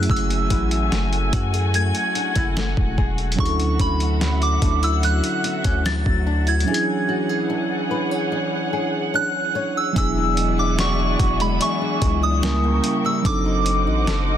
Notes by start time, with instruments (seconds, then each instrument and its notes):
Already playing: nylon-string guitar E3 F#4 A4, tine electric piano F#3 A3 C#4 E4 G#4, string section A3 F#4 E5 G#5
0.03 closed hi-hat
0.10 808-style bass F#1, nylon-string guitar F#3, synth bell E6, kick
0.16 closed hi-hat
0.30 closed hi-hat
0.50 808-style bass A1, nylon-string guitar E4, kick, closed hi-hat
0.71 closed hi-hat
0.92 808-style bass F#1, nylon-string guitar A3, snare, closed hi-hat
1.13 closed hi-hat
1.33 808-style bass F#2, nylon-string guitar F#4, string section F#5, kick, closed hi-hat
1.54 nylon-string guitar G#4, closed hi-hat
1.74 nylon-string guitar A3, synth bell G#6, closed hi-hat
1.95 closed hi-hat
2.15 nylon-string guitar D4, closed hi-hat
2.35 808-style bass F#1, nylon-string guitar E4, kick, closed hi-hat
2.57 nylon-string guitar A3, snare, closed hi-hat
2.77 808-style bass E1, kick
2.98 nylon-string guitar G#4, kick
3.18 closed hi-hat
3.32 tine electric piano F#3, closed hi-hat
3.37 808-style bass D2, nylon-string guitar D3, tine electric piano C#4 D4 E4, string section E5 F#5, synth bell C#6, kick
3.42 tine electric piano G#4, closed hi-hat
3.49 tine electric piano A4
3.60 closed hi-hat
3.79 808-style bass D2, nylon-string guitar C#4, synth bell B5, kick, closed hi-hat
4.00 closed hi-hat
4.21 nylon-string guitar F#3, snare, closed hi-hat
4.42 synth bell D6, closed hi-hat
4.62 808-style bass D2, nylon-string guitar D4, kick, closed hi-hat
4.83 nylon-string guitar E4, synth bell E6, closed hi-hat
5.03 nylon-string guitar F#3, synth bell F#6, closed hi-hat
5.24 closed hi-hat
5.44 nylon-string guitar B3, closed hi-hat
5.64 808-style bass D2, nylon-string guitar C#4, kick, closed hi-hat
5.85 nylon-string guitar F#3, synth bell A6, snare, closed hi-hat
6.06 808-style bass D2, kick
6.27 nylon-string guitar D4
6.47 nylon-string guitar E4, synth bell G#6, closed hi-hat
6.60 tine electric piano F#3, closed hi-hat
6.66 string section E3 G#4 C#5 F#5, nylon-string guitar E3, tine electric piano C#4 D4 E4
6.71 tine electric piano G#4, closed hi-hat
7.09 nylon-string guitar F#4
7.29 nylon-string guitar G#4
7.50 nylon-string guitar D4
7.91 nylon-string guitar B4
8.11 nylon-string guitar C#5
8.32 nylon-string guitar D4
8.73 nylon-string guitar G#4
9.14 nylon-string guitar D4, synth bell F#6
9.55 nylon-string guitar C#5
9.77 synth bell E6
9.93 808-style bass E1, nylon-string guitar E3, tine electric piano F#3 B3 D4, string section G#4 D5 E5 F#5, kick, closed hi-hat
9.98 tine electric piano E4 G#4, synth bell E6
10.17 nylon-string guitar D4
10.37 nylon-string guitar G#3, closed hi-hat
10.58 nylon-string guitar D4, synth bell D6
10.78 nylon-string guitar F#4, synth bell C#6, snare, closed hi-hat
10.99 nylon-string guitar D4
11.20 808-style bass E1, nylon-string guitar F#4, kick, closed hi-hat
11.40 nylon-string guitar G#3, synth bell B5, closed hi-hat
11.61 nylon-string guitar E3, synth bell C#6, closed hi-hat
11.81 nylon-string guitar D4
12.02 808-style bass C#2, nylon-string guitar G#3, kick, closed hi-hat
12.23 nylon-string guitar D4, synth bell D#6
12.41 nylon-string guitar C#3, tine electric piano G3 A#3 C#4 E4 A#4, string section A#4 G5 C#6, snare, closed hi-hat
12.64 nylon-string guitar A#3
12.84 nylon-string guitar E4, closed hi-hat
13.05 nylon-string guitar G3, synth bell E6
13.22 808-style bass F#1, tine electric piano F#3 C4 D4, nylon-string guitar F#3, string section C5 D#5 F#5 D6, kick, closed hi-hat
13.26 tine electric piano D#4 A4, synth bell D6
13.46 nylon-string guitar D#4
13.66 nylon-string guitar C4, closed hi-hat
13.87 808-style bass A1, nylon-string guitar D#4
14.07 808-style bass F#1, nylon-string guitar A4, snare, closed hi-hat
14.28 nylon-string guitar D#4